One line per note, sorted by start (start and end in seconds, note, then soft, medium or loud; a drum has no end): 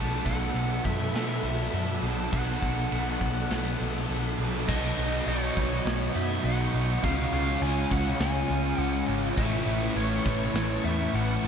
0.00 0.21 B1 medium
0.00 2.05 B2 medium
0.00 2.01 D#3 medium
0.00 2.03 F#3 medium
0.00 2.03 B3 medium
0.00 2.01 D#4 medium
0.00 2.00 A4 loud
0.00 4.64 A4 medium
0.00 4.64 F#5 medium
0.00 0.26 A5 loud
0.00 2.30 B5 medium
0.00 4.64 E6 medium
0.25 0.50 B1 medium
0.25 0.84 F#5 loud
0.25 kick medium
0.54 0.79 B1 medium
0.54 crash soft
0.85 1.09 F#2 medium
0.85 2.32 B2 medium
0.85 2.34 F#3 medium
0.85 2.34 B3 medium
0.85 1.12 E5 medium
0.85 kick medium
1.13 1.38 B2 medium
1.13 2.31 B2 medium
1.13 2.33 F#3 medium
1.13 1.99 E5 medium
1.13 snare loud
1.13 crash medium
1.18 2.34 B3 medium
1.43 1.68 B1 medium
1.61 snare soft
1.73 1.98 F#2 medium
1.73 crash medium
2.02 2.27 B1 medium
2.02 2.30 B2 medium
2.02 2.31 D#3 medium
2.02 2.32 F#3 medium
2.02 2.33 B3 medium
2.02 2.30 D#4 medium
2.02 2.30 A4 medium
2.31 2.57 B1 medium
2.31 4.36 B2 medium
2.31 4.37 D#3 medium
2.31 4.37 F#3 medium
2.31 4.37 B3 medium
2.31 4.37 D#4 medium
2.31 4.36 A4 medium
2.31 4.06 F#5 loud
2.31 4.66 A5 medium
2.31 kick loud
2.31 crash medium
2.62 2.86 B1 medium
2.62 kick medium
2.92 3.16 B1 medium
2.92 crash medium
3.21 3.45 B1 medium
3.21 4.67 B2 medium
3.21 4.67 F#3 medium
3.21 4.66 B3 medium
3.21 kick medium
3.50 3.75 B1 medium
3.50 4.66 B2 medium
3.50 4.67 F#3 medium
3.50 4.68 B3 medium
3.50 snare loud
3.50 crash medium
3.81 4.04 B1 medium
3.96 snare soft
4.09 4.34 B1 medium
4.09 crash medium
4.37 4.63 B1 medium
4.37 4.65 B2 medium
4.37 4.66 D#3 medium
4.37 4.67 F#3 medium
4.37 4.67 B3 medium
4.37 4.66 D#4 medium
4.37 4.66 A4 medium
4.66 4.90 B1 loud
4.66 5.26 B2 medium
4.66 5.24 D#3 loud
4.66 4.98 F#3 medium
4.66 4.96 B3 loud
4.66 4.95 D#4 loud
4.66 7.00 F#4 medium
4.66 5.28 D#5 medium
4.66 7.01 D#5 medium
4.66 7.00 B5 medium
4.66 11.48 C#6 medium
4.66 kick loud
4.66 crash loud
4.96 5.20 B1 medium
4.96 5.26 F#3 medium
4.96 5.26 B3 medium
4.96 5.27 D#4 medium
5.26 5.49 B1 medium
5.26 5.86 B2 medium
5.26 6.42 D#3 medium
5.26 6.16 F#3 medium
5.26 6.14 B3 medium
5.26 6.12 D#4 medium
5.26 5.86 C#5 medium
5.26 open hi-hat medium
5.56 5.79 B1 medium
5.56 6.45 F#3 medium
5.56 6.46 B3 medium
5.56 kick medium
5.85 6.08 B1 medium
5.85 6.14 C#5 medium
5.85 snare loud
5.85 open hi-hat medium
6.13 6.38 F#2 medium
6.13 6.43 F#3 medium
6.13 6.44 B3 medium
6.13 6.45 D#4 medium
6.13 6.44 E5 medium
6.43 6.66 B1 loud
6.43 7.02 B2 medium
6.43 7.01 D#3 medium
6.43 6.74 F#3 medium
6.43 6.73 B3 medium
6.43 6.71 D#4 medium
6.43 7.03 F#5 loud
6.43 open hi-hat medium
6.72 6.96 B1 medium
6.72 7.02 F#3 medium
6.72 7.01 B3 medium
6.72 7.01 D#4 medium
7.02 7.26 C#2 loud
7.02 7.59 C#3 medium
7.02 7.34 G#3 loud
7.02 7.33 C#4 medium
7.02 9.36 F4 medium
7.02 7.31 F4 loud
7.02 9.36 C#5 medium
7.02 7.31 F5 medium
7.02 9.36 G#5 medium
7.02 kick loud
7.02 open hi-hat medium
7.32 7.55 C#2 medium
7.32 7.60 G#3 medium
7.32 7.62 C#4 medium
7.32 7.62 F4 medium
7.32 7.62 F5 loud
7.61 7.84 C#2 loud
7.61 8.77 C#3 medium
7.61 8.50 G#3 medium
7.61 8.50 C#4 medium
7.61 8.48 F4 medium
7.61 7.92 G#5 loud
7.61 open hi-hat medium
7.91 8.13 C#2 medium
7.91 8.79 G#3 medium
7.91 8.81 C#4 medium
7.91 8.21 F#5 medium
7.91 kick medium
8.20 8.42 C#2 medium
8.20 8.81 G#5 medium
8.20 snare loud
8.20 open hi-hat medium
8.49 8.72 C#2 medium
8.49 8.78 G#3 medium
8.49 8.80 C#4 medium
8.49 8.80 F4 medium
8.78 9.01 C#2 loud
8.78 9.35 C#3 medium
8.78 9.08 G#3 medium
8.78 9.08 C#4 medium
8.78 9.05 F4 medium
8.78 9.05 F#5 medium
8.78 open hi-hat medium
9.07 9.30 G#1 medium
9.07 9.37 G#3 medium
9.07 9.38 C#4 medium
9.07 9.35 F4 medium
9.36 9.60 A1 loud
9.36 11.48 A2 medium
9.36 9.94 E3 medium
9.36 9.68 A3 loud
9.36 9.66 C#4 loud
9.36 11.48 E4 medium
9.36 9.64 E4 loud
9.36 11.48 B4 medium
9.36 9.97 E5 medium
9.36 11.48 A5 medium
9.36 kick loud
9.36 open hi-hat medium
9.65 9.89 A1 medium
9.65 9.96 A3 medium
9.65 9.97 C#4 medium
9.65 9.98 E4 medium
9.95 10.18 A1 loud
9.95 11.14 A2 medium
9.95 11.13 E3 medium
9.95 10.85 A3 medium
9.95 10.85 C#4 medium
9.95 10.82 E4 medium
9.95 10.54 C#5 medium
9.95 open hi-hat medium
10.25 10.48 A1 medium
10.25 11.14 E3 medium
10.25 11.15 A3 medium
10.25 kick medium
10.54 10.77 A1 medium
10.54 10.84 C#5 medium
10.54 snare loud
10.54 open hi-hat medium
10.84 11.07 E2 medium
10.84 11.14 A3 medium
10.84 11.15 C#4 medium
10.84 11.15 E4 medium
10.84 11.15 E5 medium
11.14 11.36 A1 loud
11.14 11.48 A2 medium
11.14 11.48 E3 medium
11.14 11.44 A3 medium
11.14 11.44 C#4 medium
11.14 11.41 E4 medium
11.14 11.48 F#5 loud
11.14 open hi-hat medium
11.42 11.48 A1 medium
11.42 11.48 A3 medium
11.42 11.48 C#4 medium
11.42 11.48 E4 medium